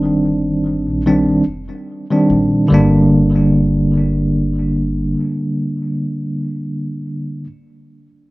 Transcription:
Already playing: upright bass G1, tine electric piano D#3 G3 C4 D4
0.88 upright bass A#1
1.06 tine electric piano D#3 G3 C4 D4
1.48 upright bass F1
2.10 tine electric piano D#3 G3 C4 D4
2.30 upright bass A#1
2.68 upright bass G1, tine electric piano D3 G3
2.72 tine electric piano A#3 D4

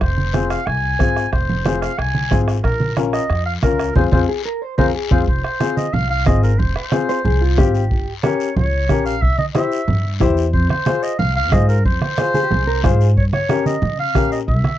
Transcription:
0.00 upright bass F1, clarinet C5, bombo low, bombo rim, high conga, long guiro
0.18 high conga
0.33 upright piano C4 F4 G#4, bombo rim, high conga, short guiro
0.50 clarinet F5, bombo rim, short guiro
0.66 upright bass C2, clarinet G#5, bombo rim, high conga, long guiro
0.99 upright bass G#1, upright piano C4 F4 G#4, bombo low, bombo rim, high conga, short guiro
1.16 bombo rim, short guiro
1.32 upright bass F1, clarinet C5, bombo low, bombo rim, high conga, long guiro
1.50 low conga
1.65 upright piano C4 F4 G#4, bombo rim, high conga, short guiro
1.81 clarinet F5, bombo rim, short guiro
1.98 upright bass C2, clarinet G#5, bombo rim, high conga, long guiro
2.15 high conga
2.31 upright bass G#1, upright piano C4 F4 G#4, bombo low, bombo rim, high conga, low conga, short guiro
2.48 bombo rim, short guiro
2.64 upright bass A#1, clarinet A#4, bombo low, bombo rim, high conga, long guiro
2.80 high conga
2.97 upright piano C#4 F4 A#4, bombo rim, high conga, short guiro
3.13 clarinet D#5, bombo rim, short guiro
3.30 upright bass F2, bombo rim, high conga, long guiro
3.46 clarinet F5
3.63 upright bass C#2, upright piano C#4 F4 A#4, clarinet A#4, bombo low, bombo rim, high conga, short guiro
3.79 bombo rim, short guiro
3.96 upright bass F2, upright piano C4 F4 G#4, clarinet C5, bombo low, high conga, long guiro
4.12 upright bass F2, upright piano C4 F4 G#4, clarinet C5, bombo low, high conga, long guiro
4.29 clean electric guitar G#4
4.45 clean electric guitar A#4
4.62 clean electric guitar C5
4.78 upright bass F2, upright piano C4 F4 G#4, clean electric guitar A#4, clarinet C5, bombo low, high conga, long guiro
4.95 clean electric guitar G#4
5.11 upright bass F2, upright piano C4 F4 G#4, clarinet C5, bombo low, high conga, long guiro
5.27 upright bass F1, clarinet C5, bombo low, high conga, long guiro
5.44 clarinet C5, bombo rim
5.60 upright piano C4 F4 G#4, bombo rim, high conga, short guiro
5.77 clarinet D#5, high conga, short guiro
5.93 upright bass C2, clarinet F5, low conga, long guiro
6.10 clarinet F5, high conga
6.26 upright bass G#1, upright piano C4 F4 G#4, clarinet D#5, bombo low, bombo rim, high conga, short guiro
6.43 clarinet A#4, short guiro
6.59 upright bass F1, clarinet C5, bombo low, high conga, low conga, long guiro
6.75 clarinet C5, bombo rim
6.92 upright piano C4 F4 G#4, bombo rim, high conga, short guiro
7.09 clean electric guitar C5, short guiro
7.25 upright bass C2, clean electric guitar G#4, low conga, long guiro
7.41 clean electric guitar F4, high conga
7.57 upright bass G#1, upright piano C4 F4 G4, clean electric guitar G4, bombo low, bombo rim, high conga, low conga, short guiro
7.75 clean electric guitar G4, short guiro
7.91 upright bass G1, bombo low, high conga, long guiro
8.23 upright piano C#4 G4 A#4, clarinet C#5, bombo rim, high conga, short guiro
8.40 short guiro
8.56 upright bass C#2, clarinet C#5, low conga, long guiro
8.73 high conga
8.89 upright bass A#1, upright piano C#4 G4 A#4, bombo low, bombo rim, high conga, short guiro
9.06 clarinet F5, short guiro
9.22 upright bass C2, clarinet E5, bombo low, high conga, long guiro
9.38 clarinet D#5, high conga
9.54 upright piano E4 G4 C5, clarinet E5, bombo rim, high conga, short guiro
9.72 short guiro
9.88 upright bass G2, low conga, long guiro
10.04 high conga
10.20 upright bass E2, upright piano E4 G4 C5, bombo low, bombo rim, high conga, low conga, short guiro
10.37 short guiro
10.53 upright bass F2, clarinet C5, bombo low, high conga, long guiro
10.70 clarinet C5, bombo rim, high conga
10.86 upright piano F4 G#4 C5, bombo rim, high conga, short guiro
11.03 clarinet D#5, short guiro
11.19 upright bass C2, clarinet F5, low conga, long guiro
11.36 clarinet F5, high conga
11.52 upright bass G#2, upright piano F4 G#4 C5, clarinet D#5, bombo low, bombo rim, high conga, short guiro
11.69 clarinet A#4, short guiro
11.85 upright bass F2, clarinet C5, bombo low, high conga, long guiro
12.01 clarinet C5, bombo rim, high conga
12.18 upright piano F4 G#4 C5, bombo rim, high conga, short guiro
12.34 clean electric guitar G#4, high conga, short guiro
12.43 clean electric guitar G4
12.51 upright bass C2, clean electric guitar G#4, low conga, long guiro
12.67 clean electric guitar A#4, high conga
12.83 upright bass G#2, upright piano F4 G#4 C5, clean electric guitar G#4, bombo low, bombo rim, high conga, low conga, short guiro
13.01 short guiro
13.17 upright bass G2, clarinet C#5, bombo low, high conga, long guiro
13.33 clarinet C#5, bombo rim, high conga
13.49 upright piano C#4 G4 A#4, bombo rim, high conga, short guiro
13.66 clarinet D#5, high conga, short guiro
13.82 upright bass C#3, low conga, long guiro
13.99 clarinet F5, high conga
14.15 upright bass A#2, upright piano C#4 G4 A#4, bombo low, bombo rim, high conga, short guiro
14.32 clarinet D#5, short guiro
14.48 upright bass C2, clarinet E5, bombo low, high conga, long guiro
14.64 bombo rim, high conga

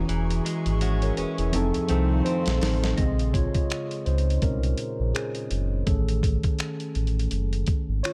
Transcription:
Already playing: tine electric piano E3 C#4 F#4 G#4, ambient pad G#4 E5 G#5 C#6
0.09 sub bass E1, clean electric guitar E3, closed hi-hat
0.30 closed hi-hat
0.45 clean electric guitar G#3, closed hi-hat
0.66 sub bass G#1, closed hi-hat
0.81 clean electric guitar G#3 C#4 F#4, closed hi-hat
1.02 tine electric piano A#4 C#5, closed hi-hat
1.17 sub bass E1, clean electric guitar C#4, tine electric piano G#4 B4, closed hi-hat
1.38 sub bass E1, tine electric piano E4 G#4, closed hi-hat
1.52 sub bass F1, clean electric guitar F2, tine electric piano F3 C4 D#4 A4, ambient pad A4 D#5 F5 C6, closed hi-hat
1.74 sub bass C2, closed hi-hat
1.88 sub bass C2, clean electric guitar D#3 A3 C4, tine electric piano F3 C4 D#4 A4, closed hi-hat
2.25 clean electric guitar C4, tine electric piano D#4 C5, closed hi-hat
2.46 sub bass A#1, snare, closed hi-hat
2.61 sub bass A1, clean electric guitar D#3, snare, open hi-hat
2.84 snare
2.97 sub bass A#1, tine electric piano C#3 G#3 C4 G#4 D#5, kick, closed hi-hat
3.19 closed hi-hat
3.33 tine electric piano F4 C#5, kick, closed hi-hat
3.55 kick, closed hi-hat
3.70 finger snap, closed hi-hat
3.91 closed hi-hat
4.06 sub bass C#2, tine electric piano D#4 C5, closed hi-hat
4.18 closed hi-hat
4.30 closed hi-hat
4.42 sub bass C2, tine electric piano A#2 G#3 C4 C#4 A#4, kick, closed hi-hat
4.63 closed hi-hat
4.78 closed hi-hat
5.00 sub bass A#1
5.14 tine electric piano C#4 G#4, finger snap, closed hi-hat
5.35 closed hi-hat
5.51 sub bass F#1, closed hi-hat
5.86 sub bass A1, tine electric piano D#3 A3 C#4 G#4 A4, kick, closed hi-hat
6.09 closed hi-hat
6.23 kick, closed hi-hat
6.43 kick, closed hi-hat
6.59 finger snap, closed hi-hat
6.80 closed hi-hat
6.95 sub bass A1, closed hi-hat
7.07 closed hi-hat
7.19 closed hi-hat
7.31 sub bass F#1, closed hi-hat
7.53 closed hi-hat
7.67 kick, closed hi-hat
7.89 sub bass G#1
8.03 tine electric piano F4 C#5, finger snap, closed hi-hat

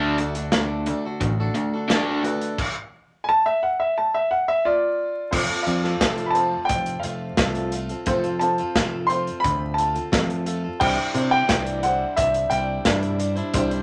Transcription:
Already playing: picked electric bass D2, steel-string acoustic guitar D3 A3 D4 F#4 A4, upright piano F#4 A4 D5, grand piano C5
0.18 overdriven electric guitar D3, steel-string acoustic guitar A3 D4 F#4 A4, closed hi-hat
0.35 steel-string acoustic guitar D4 F#4 A4, closed hi-hat
0.52 steel-string acoustic guitar D3 A3 D4 F#4 A4, snare, closed hi-hat
0.86 overdriven electric guitar D3, steel-string acoustic guitar A3 D4 F#4, closed hi-hat
0.90 steel-string acoustic guitar A4
1.05 steel-string acoustic guitar D4 F#4 A4
1.20 picked electric bass A1, overdriven electric guitar D3 A3, kick, closed hi-hat
1.40 steel-string acoustic guitar D4 F#4 A4
1.55 overdriven electric guitar D3 A3, closed hi-hat
1.74 steel-string acoustic guitar D4 F#4 A4
1.89 steel-string acoustic guitar D3 A3, overdriven electric guitar D4, snare, closed hi-hat
1.93 steel-string acoustic guitar D4 F#4 A4
2.09 steel-string acoustic guitar D4 F#4 A4
2.23 overdriven electric guitar D3, steel-string acoustic guitar A3 D4, upright piano F#4 A4 B4, closed hi-hat
2.28 steel-string acoustic guitar F#4 A4
2.41 closed hi-hat
2.58 kick, crash
3.24 grand piano G#5
3.29 grand piano A5
3.46 grand piano E5
3.63 grand piano F#5
3.80 grand piano E5
3.98 grand piano A5
4.14 grand piano E5
4.31 grand piano F#5
4.48 grand piano E5
4.65 grand piano F4 D5
5.31 picked electric bass F1, steel-string acoustic guitar F3 A3 C4 F4 A4, upright piano C4 F4 A4 C5, kick, crash
5.50 steel-string acoustic guitar C4 F4 A4
5.63 picked electric bass F2, upright piano C4 F4 A4 D5, grand piano F5, closed hi-hat
5.84 steel-string acoustic guitar C4 F4 A4, snare
6.01 picked electric bass F1, steel-string acoustic guitar F3 A3 C4 F4 A4, kick, snare, closed hi-hat
6.18 closed hi-hat
6.26 grand piano B5
6.31 upright piano C4 C5, grand piano A5
6.35 steel-string acoustic guitar A3 C4 F4 A4, upright piano F4 A4, closed hi-hat
6.65 grand piano G5
6.69 picked electric bass F1, kick, closed hi-hat
6.86 closed hi-hat
7.00 grand piano F5, closed hi-hat
7.04 picked electric bass F1, steel-string acoustic guitar A3 C4 F4 A4
7.37 picked electric bass C2, steel-string acoustic guitar F3 A3 C4 F4 A4, kick, snare, closed hi-hat
7.55 closed hi-hat
7.72 steel-string acoustic guitar A3 C4 F4 A4, closed hi-hat
7.89 steel-string acoustic guitar C4 F4 A4, closed hi-hat
8.06 picked electric bass F1, steel-string acoustic guitar F3 A3 C4 F4 A4, upright piano C4 F4 A4 C5, kick, closed hi-hat
8.23 steel-string acoustic guitar C4 F4 A4, closed hi-hat
8.39 upright piano C4 F4 A4 C5, grand piano A5, closed hi-hat
8.58 steel-string acoustic guitar C4 F4 A4, closed hi-hat
8.75 picked electric bass F1, steel-string acoustic guitar F3 A3 C4 F4 A4, kick, snare, closed hi-hat
9.07 steel-string acoustic guitar A3 C4 F4 A4, upright piano C4 F4 A4 C5, grand piano C6, closed hi-hat
9.27 closed hi-hat
9.40 grand piano B5
9.44 picked electric bass D2, kick, closed hi-hat
9.74 steel-string acoustic guitar A3, grand piano A5
9.78 steel-string acoustic guitar C4 F4 A4, closed hi-hat
9.94 steel-string acoustic guitar C4 F4 A4, closed hi-hat
10.12 picked electric bass F2, steel-string acoustic guitar F3 A3 C4 F4 A4, kick, snare, closed hi-hat
10.30 closed hi-hat
10.46 steel-string acoustic guitar A3 C4 F4 A4, closed hi-hat
10.64 steel-string acoustic guitar C4 F4 A4
10.80 picked electric bass C2, steel-string acoustic guitar C3 E3 G3 D4 E4 C5, upright piano D4 E4 G4 C5, grand piano G5, kick, crash
10.98 steel-string acoustic guitar G3 D4 E4 C5
11.14 picked electric bass C3, upright piano D4 E4 G4 C5, closed hi-hat
11.31 steel-string acoustic guitar G3 D4 E4 C5, grand piano G5
11.48 picked electric bass C2, steel-string acoustic guitar C3 E3 G3 D4 E4 C5, kick, snare, closed hi-hat
11.66 closed hi-hat
11.83 steel-string acoustic guitar G3 D4 E4 C5, upright piano D4 E4 G4 C5, grand piano F#5, closed hi-hat
12.17 picked electric bass C2, grand piano E5, kick, closed hi-hat
12.34 closed hi-hat
12.50 picked electric bass C2, steel-string acoustic guitar G3 D4 E4 C5, grand piano G5, closed hi-hat
12.85 picked electric bass G2, steel-string acoustic guitar C3 E3 G3 D4 E4 C5, kick, snare, closed hi-hat
13.03 closed hi-hat
13.19 steel-string acoustic guitar G3 D4 E4 C5, closed hi-hat
13.36 steel-string acoustic guitar G3 D4 E4 C5, closed hi-hat
13.54 picked electric bass C2, steel-string acoustic guitar C3 E3 G3 D4 E4 C5, upright piano D4 E4 G4 C5, kick, closed hi-hat
13.71 steel-string acoustic guitar G3 D4 E4 C5, closed hi-hat

